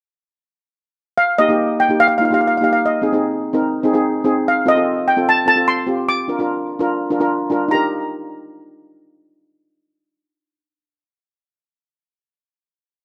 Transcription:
1.18 1.39 F5 medium
1.38 1.45 A#3 medium
1.38 1.46 D#4 medium
1.38 1.46 G4 medium
1.38 1.81 D#5 medium
1.48 1.73 A#3 medium
1.48 1.74 D#4 medium
1.48 1.74 G4 medium
1.80 2.01 G5 medium
1.89 2.08 A#3 medium
1.89 2.08 D#4 medium
1.89 2.09 G4 medium
2.00 2.07 F5 medium
2.08 2.16 F5 medium
2.18 2.26 A#3 medium
2.18 2.27 D#4 medium
2.18 2.27 F4 medium
2.18 2.24 F5 medium
2.25 2.32 F5 medium
2.31 2.49 A#3 medium
2.31 2.50 D#4 medium
2.31 2.50 G4 medium
2.31 2.40 F5 medium
2.41 2.46 F5 soft
2.48 2.55 F5 medium
2.57 2.82 A#3 medium
2.57 2.82 D#4 medium
2.57 2.63 F5 soft
2.62 2.82 G4 medium
2.62 2.70 F5 medium
2.73 2.78 F5 medium
2.86 3.41 D#5 medium
3.02 3.08 C4 medium
3.02 3.09 D#4 medium
3.02 3.09 G#4 medium
3.13 3.37 C4 medium
3.13 3.37 D#4 medium
3.13 3.38 G#4 medium
3.53 3.72 C4 medium
3.53 3.72 D#4 medium
3.53 3.72 A#4 medium
3.83 3.90 C4 medium
3.83 3.90 D#4 medium
3.83 3.91 G#4 medium
3.94 4.12 C4 medium
3.94 4.13 D#4 medium
3.94 4.13 G#4 medium
4.24 4.45 C4 medium
4.24 4.45 D#4 medium
4.24 4.45 G#4 medium
4.48 4.66 F5 medium
4.66 4.72 C4 medium
4.66 4.72 F4 medium
4.66 4.72 A4 medium
4.66 5.09 D#5 medium
4.75 5.00 C4 medium
4.75 5.01 F4 medium
4.75 5.01 A4 medium
5.08 5.26 G5 medium
5.17 5.35 C4 medium
5.17 5.35 F4 medium
5.17 5.36 A4 medium
5.29 5.47 A5 medium
5.46 5.53 C4 medium
5.46 5.53 F4 medium
5.46 5.53 A4 medium
5.46 5.68 A5 medium
5.56 5.75 C4 medium
5.56 5.75 F4 medium
5.56 5.76 A4 medium
5.68 6.06 C6 medium
5.87 6.08 C4 medium
5.87 6.08 F4 medium
5.87 6.08 G4 medium
6.09 7.27 D6 medium
6.28 6.35 D4 medium
6.28 6.35 F4 medium
6.28 6.35 A#4 medium
6.39 6.63 D4 medium
6.39 6.64 F4 medium
6.39 6.64 A#4 medium
6.79 6.98 D4 medium
6.79 6.99 F4 medium
6.79 6.99 A#4 medium
7.10 7.17 D4 medium
7.10 7.17 F4 medium
7.10 7.17 A#4 medium
7.20 7.39 D4 medium
7.20 7.39 F4 medium
7.20 7.39 A#4 medium
7.50 7.71 D4 medium
7.50 7.71 F4 medium
7.50 7.72 A#4 medium
7.68 10.83 D#4 medium
7.68 10.86 G4 medium
7.68 10.86 A#5 medium
7.75 10.89 A#4 medium

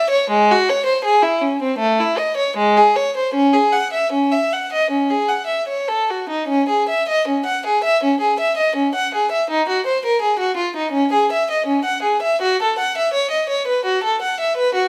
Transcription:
0.10 0.29 C#5 medium
0.30 0.49 G#3 medium
0.51 0.69 F#4 medium
0.69 0.88 C#5 medium
0.86 1.05 C5 medium
1.04 1.23 G#4 medium
1.22 1.42 E4 medium
1.41 1.61 C#4 soft
1.62 1.80 C4 medium
1.78 1.97 A3 medium
2.00 2.18 E4 medium
2.18 2.36 D#5 soft
2.37 2.55 C#5 soft
2.57 2.74 G#3 medium
2.77 2.95 G#4 soft
2.96 3.14 C#5 medium
3.17 3.34 C5 soft
3.34 3.52 C#4 medium
3.53 3.72 G#4 medium
3.73 3.92 F#5 soft
3.93 4.11 E5 soft
4.12 4.31 C#4 soft
4.32 4.51 E5 soft
4.53 4.71 F#5 soft
4.73 4.90 D#5 soft
4.90 5.09 C#4 soft
5.10 5.29 G#4 soft
5.28 5.48 F#5 soft
5.46 5.66 E5 soft
5.68 5.87 C#5 soft
5.88 6.08 A4 soft
6.10 6.29 F#4 soft
6.29 6.48 D#4 soft
6.47 6.67 C#4 medium
6.69 6.87 G#4 soft
6.89 7.07 E5 soft
7.09 7.26 D#5 medium
7.28 7.45 C#4 soft
7.46 7.63 F#5 soft
7.66 7.82 G#4 soft
7.84 8.00 E5 soft
8.03 8.19 C#4 medium
8.20 8.37 G#4 soft
8.40 8.56 E5 soft
8.57 8.74 D#5 soft
8.76 8.92 C#4 soft
8.95 9.11 F#5 soft
9.14 9.30 G#4 soft
9.31 9.47 E5 soft
9.50 9.66 D#4 medium
9.69 9.84 F#4 soft
9.86 10.02 C5 medium
10.05 10.21 A#4 soft
10.22 10.38 G#4 soft
10.39 10.56 F#4 soft
10.57 10.74 F4 soft
10.76 10.93 D#4 soft
10.91 11.09 C#4 medium
11.13 11.29 G#4 medium
11.32 11.48 E5 soft
11.51 11.66 D#5 soft
11.66 11.83 C#4 soft
11.85 12.02 F#5 soft
12.02 12.21 G#4 soft
12.22 12.40 E5 soft
12.42 12.59 F#4 medium
12.62 12.79 A4 soft
12.79 12.96 F#5 medium
12.97 13.14 E5 soft
13.13 13.31 C#5 medium
13.31 13.49 D#5 soft
13.49 13.67 C#5 medium
13.67 13.85 B4 soft
13.85 14.03 F#4 medium
14.03 14.21 A4 soft
14.22 14.40 F#5 soft
14.40 14.58 E5 soft
14.57 14.75 B4 medium
14.74 14.88 F#4 medium

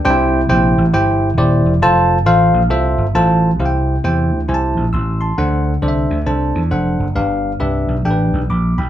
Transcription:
0.05 0.43 C2 loud
0.05 0.73 C3 medium
0.05 0.12 D4 medium
0.05 0.40 G4 medium
0.05 0.40 C5 loud
0.05 0.40 G5 loud
0.10 0.43 E4 loud
0.49 0.74 A#1 medium
0.49 0.85 E4 medium
0.49 0.84 G4 medium
0.49 0.84 C5 medium
0.49 0.84 G5 loud
0.78 0.92 A1 medium
0.94 1.32 G1 medium
0.94 1.29 E4 medium
0.94 1.29 G4 medium
0.94 1.29 C5 medium
0.94 1.29 G5 medium
1.38 1.61 D#1 loud
1.38 1.73 E4 medium
1.38 1.73 G4 medium
1.38 1.73 C5 medium
1.38 1.73 D5 medium
1.66 1.80 E1 medium
1.82 2.26 F1 medium
1.82 2.17 F4 loud
1.82 2.17 A4 loud
1.82 2.17 C5 medium
1.82 2.17 A5 loud
2.26 2.50 A1 medium
2.26 2.61 F4 medium
2.26 2.61 A4 medium
2.26 2.61 C5 medium
2.26 2.61 F5 loud
2.54 2.70 A#1 medium
2.70 2.94 C2 medium
2.70 3.05 F4 medium
2.70 3.06 A4 medium
2.70 3.06 C5 medium
2.70 3.06 E5 medium
2.98 3.12 G1 medium
3.15 3.53 A1 medium
3.15 3.50 F4 medium
3.15 3.50 A4 medium
3.15 3.50 C5 medium
3.15 3.50 A5 medium
3.59 3.97 C2 medium
3.59 4.28 C3 medium
3.59 3.95 E4 medium
3.59 3.95 G4 medium
3.59 3.95 C5 medium
3.59 3.67 F5 medium
3.66 3.98 G5 medium
4.04 4.32 E2 medium
4.04 4.39 E4 medium
4.04 4.39 G4 medium
4.04 4.39 C5 medium
4.04 4.39 G5 medium
4.32 4.46 D2 medium
4.48 4.72 C2 medium
4.48 4.84 E4 medium
4.48 4.84 G4 medium
4.48 4.84 C5 medium
4.48 4.55 G#5 medium
4.54 4.86 A5 medium
4.77 4.91 A#1 medium
4.93 5.31 A1 medium
4.93 5.20 C6 soft
4.93 5.20 E6 medium
5.21 5.64 A5 medium
5.21 5.63 C6 medium
5.38 5.76 D2 medium
5.38 6.07 D3 medium
5.38 5.73 D4 medium
5.38 5.73 A4 medium
5.38 5.73 C5 medium
5.38 5.73 F#5 medium
5.82 6.06 C2 medium
5.82 6.17 D4 medium
5.82 6.18 A4 medium
5.82 6.18 C5 medium
5.82 5.89 D5 medium
5.88 6.20 E5 medium
6.10 6.25 D2 medium
6.26 6.51 C2 medium
6.26 6.62 D4 medium
6.26 6.62 A4 medium
6.26 6.62 C5 medium
6.26 6.62 A5 medium
6.55 6.69 E2 medium
6.71 6.95 F1 medium
6.71 7.06 D4 medium
6.71 7.07 A4 medium
6.71 7.07 C5 medium
6.71 7.07 F#5 medium
6.99 7.14 F#1 medium
7.15 7.54 G1 medium
7.15 7.85 G2 medium
7.15 7.51 D4 medium
7.15 7.51 G4 medium
7.15 7.51 B4 medium
7.15 7.51 F5 medium
7.60 7.85 C2 medium
7.60 7.96 D4 medium
7.60 7.96 G4 medium
7.60 7.96 B4 medium
7.60 7.96 E5 medium
7.88 8.03 B1 medium
8.05 8.29 A1 medium
8.05 8.40 D4 medium
8.05 8.41 G4 medium
8.05 8.12 A4 medium
8.05 8.41 G5 medium
8.11 8.43 B4 medium
8.33 8.48 B1 medium
8.50 8.74 A#1 medium
8.50 8.77 B5 soft
8.50 8.77 D6 medium
8.78 8.89 B1 medium
8.78 8.89 G5 medium
8.78 8.89 B5 medium

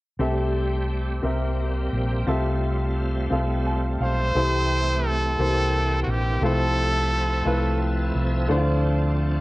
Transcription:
0.19 1.19 C2 medium
0.19 1.20 C3 soft
0.19 4.31 G3 soft
0.19 1.23 A3 soft
0.19 1.07 C4 medium
0.19 4.31 C4 soft
0.19 1.07 G4 medium
0.19 2.26 G4 soft
0.19 1.07 A4 medium
0.19 1.08 E5 medium
1.22 1.89 C2 medium
1.22 2.23 C3 soft
1.22 2.27 A#3 soft
1.22 2.10 C4 medium
1.22 2.11 G4 soft
1.22 2.11 A#4 soft
1.22 2.11 E5 medium
1.93 2.25 A#1 medium
2.27 3.27 C2 medium
2.27 3.27 C3 medium
2.27 4.33 A3 soft
2.27 3.14 C4 medium
2.27 3.15 F4 medium
2.27 4.33 F4 medium
2.27 3.15 A4 medium
2.27 3.16 E5 medium
3.30 3.97 C2 medium
3.30 4.18 C4 medium
3.30 4.19 F4 soft
3.30 4.19 A4 soft
3.30 4.00 F5 medium
3.66 3.98 A5 medium
4.00 4.32 B1 medium
4.00 5.08 C5 medium
4.00 4.33 F5 medium
4.35 5.35 C2 medium
4.35 5.35 C3 soft
4.35 6.41 E3 medium
4.35 5.22 A3 medium
4.35 5.39 A3 soft
4.35 9.41 C4 soft
4.35 5.23 E4 medium
4.35 5.23 G4 medium
4.35 6.41 G4 medium
4.35 5.23 C5 medium
5.07 6.02 A4 medium
5.38 6.04 C2 medium
5.38 6.39 C3 soft
5.38 6.26 A#3 medium
5.38 6.42 A#3 soft
5.38 6.26 E4 soft
5.38 6.26 G4 soft
5.38 6.27 C5 medium
6.03 6.12 F#4 medium
6.07 6.40 A#1 medium
6.07 6.44 G4 medium
6.41 7.42 C2 medium
6.41 7.43 C3 medium
6.41 9.41 F3 soft
6.41 7.30 A3 medium
6.41 7.30 E4 medium
6.41 7.30 F4 medium
6.41 9.41 A4 medium
6.41 7.78 A4 medium
6.41 7.31 C5 medium
6.41 8.49 E5 soft
7.45 8.11 C2 medium
7.45 8.33 A3 medium
7.45 8.33 E4 medium
7.45 8.34 F4 medium
7.45 8.34 B4 medium
8.15 8.47 C2 medium
8.48 9.41 D2 medium
8.48 9.41 D3 medium
8.48 9.37 A3 medium
8.48 9.37 D4 medium
8.48 9.41 D4 medium
8.48 8.57 E4 medium
8.48 9.38 C5 medium
8.57 9.41 F4 medium

